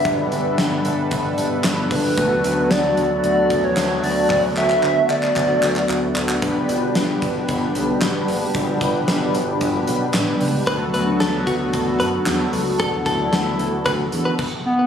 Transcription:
<<
  \new Staff \with { instrumentName = "Soft synth lead" } { \time 4/4 \key g \lydian \tempo 4 = 113 e''8 r2. b'8~ | b'4 d''4 d''8. cis''8. d''8 | d''8 e''4 d''2 r8 | r1 |
r1 | r1 | r2. r8 b8 | }
  \new Staff \with { instrumentName = "Clean electric guitar" } { \time 4/4 \key g \lydian r1 | r1 | r1 | r1 |
r1 | b'8 b'8 a'8 fis'16 r8. b'16 r4 r16 | a'8 a'4 r8 b'16 r8 b'16 r4 | }
  \new Staff \with { instrumentName = "Analog polysynth" } { \time 4/4 \key g \lydian <b d' g' b'>1 | <b d' fis' a'>1~ | <b d' fis' a'>1 | <b d' g' b'>1~ |
<b d' g' b'>1 | <b d' fis' a'>1~ | <b d' fis' a'>2. r4 | }
  \new Staff \with { instrumentName = "Analog synth pad" } { \time 4/4 \key g \lydian << { <b, d a'>1 | <d fis'>1~ | <d fis'>1 | <b, g'>1~ |
<b, g'>1 | fis'1 | e'2. r4 | } \\ { <g d'>1 | <fis a b>1~ | <fis a b>1 | <d g d'>1~ |
<d g d'>1 | <fis a b>1~ | <fis a b>2. r4 | } >> }
  \new Staff \with { instrumentName = "Analog synth bass" } { \clef bass \time 4/4 \key g \lydian g,,8 g,,8 g,,8 g,,8 g,,8 g,,8 g,,8 g,,8 | d,8 d,8 d,8 d,8 d,8 d,8 d,8 d,8 | d,8 d,8 d,8 d,8 d,8 d,8 d,8 d,8 | g,,8 g,,8 g,,8 g,,8 g,,8 b,,8 a,,8 fis,,8 |
g,,8 g,,8 g,,8 g,,8 g,,8 b,,8 a,,8 cis,8 | d,8 d,8 d,8 d,8 d,8 fis,8 e,8 cis,8 | d,8 d,8 d,8 d,8 d,8 e,8 r4 | }
  \new DrumStaff \with { instrumentName = "Drums" } \drummode { \time 4/4 <hh bd>8 hh8 <hh sn>8 hh8 <hh bd>8 hh8 <hc hh sn>8 <hho bd>8 | <hh bd>8 hh8 <hh sn>8 hh8 hh8 <hh bd>8 <hc hh sn>8 hho8 | <hc bd>8 hc16 hc16 hc8 hc16 hc16 <hc bd>8 hc16 hc16 hc8 hc16 hc16 | <hh bd>8 hh8 <hh sn>8 <hh bd>8 <hh bd>8 hh8 <hc hh sn>8 hho8 |
<hh bd>8 <hh bd>8 <hh sn>8 hh8 <hh bd>8 hh8 <hc hh sn>8 hho8 | <hh bd>8 hh8 <hh sn>8 <hh bd>8 <hh bd>8 hh8 <hc hh sn>8 hho8 | bd8 <hh bd>8 <hh sn>8 hh8 <hh bd>8 hh8 <cymc bd>4 | }
>>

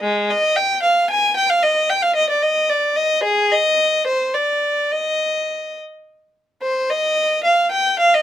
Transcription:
\new Staff \with { instrumentName = "Violin" } { \time 6/8 \key ees \major \tempo 4. = 73 aes8 ees''8 g''8 f''8 aes''8 g''16 f''16 | ees''8 g''16 f''16 ees''16 d''16 ees''8 d''8 ees''8 | aes'8 ees''4 c''8 d''4 | ees''4. r4. |
c''8 ees''4 f''8 g''8 f''16 ees''16 | }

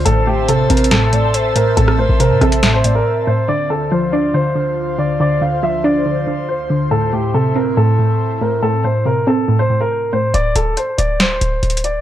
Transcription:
<<
  \new Staff \with { instrumentName = "Soft synth lead" } { \time 4/4 \key d \minor \tempo 4 = 140 c''2~ c''8 d''8 c''8 c''8 | r8 bes'8 c''8 e''4 d''8 r4 | r1 | r1 |
r1 | r1 | r1 | }
  \new Staff \with { instrumentName = "Grand piano" } { \time 4/4 \key d \minor a'8 g'8 a'8 bes'8 a'4. bes'8 | a'8 c''8 bes'8 a'8. c''8 bes'8. c''8 | d''8 a'8 c''8 d''8 c''4. d''8 | d''8 f''8 e''8 d''4. c''4 |
a'8 g'8 a'8 bes'8 a'4. bes'8 | a'8 c''8 bes'8 a'8. c''8 bes'8. c''8 | d''8 a'8 c''8 d''8 c''4. d''8 | }
  \new Staff \with { instrumentName = "Analog synth pad" } { \time 4/4 \key d \minor << { e''1~ | e''1 | c''1~ | c''1~ |
c''1~ | c''1 | r1 | } \\ { <c' c'' a''>1~ | <c' c'' a''>1 | <d, d f'>1~ | <d, d f'>1 |
<a, c' e'>1~ | <a, c' e'>1 | r1 | } >> }
  \new Staff \with { instrumentName = "Synth pluck" } { \clef bass \time 4/4 \key d \minor a,8 a,8 c8 c'8 a,8 a,4 a,8 | a,8 a,8 c8 c'8 a,8 a,4 a,8 | d8 d8 f8 d'8 d8 d4 d8 | d8 d8 f8 d'8 d8 d4 d8 |
a,8 a,8 c8 c'8 a,8 a,4 a,8 | a,8 a,8 c8 c'8 a,8 a,4 a,8 | r1 | }
  \new Staff \with { instrumentName = "808-style bass" } { \clef bass \time 4/4 \key d \minor a,,4. a,,2~ a,,8 | a,,8. a,,8 a,16 a,,4. r4 | r1 | r1 |
r1 | r1 | d,,8 d,,8 r8 d,,4 d,,8 d,,4 | }
  \new DrumStaff \with { instrumentName = "Drums" } \drummode { \time 4/4 hh4 \tuplet 3/2 { hh16 r16 r16 hh16 hh16 hh16 } <hh sn>8 hh8 hh8 hh8 | hh16 ss8. hh8 <hh ss>16 hh16 <hh sn>8 hh8 r4 | r4 r4 r4 r4 | r4 r4 r4 r4 |
r4 r4 r4 r4 | r4 r4 r4 r4 | hh8 hh8 hh8 hh8 <hh sn>8 hh8 \tuplet 3/2 { hh16 hh16 hh16 hh16 r16 r16 } | }
>>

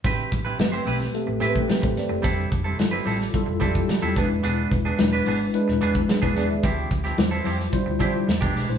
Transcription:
<<
  \new Staff \with { instrumentName = "Tine electric piano" } { \time 4/4 \key a \minor \tempo 4 = 109 << { r2. <e' b'>16 <g' c''>16 <a' d''>16 <g' c''>16~ | <g' c''>16 r2. r8. | r2 r8 <e' b'>8 <d' gis'>16 <e' b'>16 <gis' d''>16 <b' e''>16~ | <b' e''>16 r2. r8. | } \\ { r4 <a c' g' b'>4 <a c' g' a'>8 <a c' g' a' b'>4~ <a c' g' a' b'>16 r16 | r4 <g e' f' a'>4 <g e' f' a'>8 <g e' f' g' a'>4 <gis d' e' b'>8~ | <gis d' e' b'>4 <gis d' e' b'>4 <gis d' e' b'>8 r4. | r4 <g e' f' c''>4 <g e' f' c''>8 <g e' f' c''>8 r8. <gis d' e' bis'>16 | } >> }
  \new Staff \with { instrumentName = "Clean electric guitar" } { \time 4/4 \key a \minor <c' e' g' b'>8 r16 <c' e' g' b'>16 r16 <c' e' g' c''>16 <c' e' g' b'>16 r8. <c' e' g' b'>16 r4 r16 | <g c' e' a'>8 r16 <g c' e' a'>16 r16 <g c' e' b'>16 <g c' e' a'>16 r8. <g c' e' a'>16 r8 <g c' e' a'>16 <e b d' gis'>16 r16 | <e b d' gis'>8 r16 <e b d' gis'>16 r16 <e b d' b'>16 <e b d' gis'>16 r8. <e b d' gis'>16 r8 <e b d' gis'>16 <e b d' gis'>16 r16 | <f c' e' g'>8 r16 <f c' e' g'>16 r16 <f c' e' a'>16 <f c' e' g'>16 r8. <f c' e' g'>16 r8 <e gis d' g'>16 <e gis d' g'>16 r16 | }
  \new Staff \with { instrumentName = "Fingered electric bass" } { \clef bass \time 4/4 \key a \minor a,,8 a,,8 g,,8 b,,8 r16 a,,16 a,8 r16 a,,16 g,,16 fis,,16 | f,,8 f,,8 g,,8 a,,8 r16 f,,16 f,8 r16 e,16 e,,16 f,,16 | e,,8 e,,8 e,,8 gis,,8 r16 e,,16 e,8 r16 e,,16 e,16 dis,16 | d,8 d,8 e,8 f,8 r16 d,16 d8 e,16 e,,16 b,,16 bes,,16 | }
  \new DrumStaff \with { instrumentName = "Drums" } \drummode { \time 4/4 <hh bd>8 <hh bd>8 <hh sn>8 hho16 sn16 hh8 hh16 bd16 <hh sn>16 bd16 <hh sn>8 | <hh bd>8 <hh bd>8 <hh sn>8 hho16 sn16 <hh bd>8 <hh bd>16 bd16 <hh sn>8 <hh bd>8 | hh8 <hh bd>8 <hh sn>8 hho8 hh16 sn16 hh16 bd16 <hh sn>16 bd16 <hh sn>8 | <hh bd>8 <hh bd>16 sn16 <hh sn>8 hho16 sn16 <hh bd>8 <hh bd>8 <hh sn>16 bd16 <hho sn>8 | }
>>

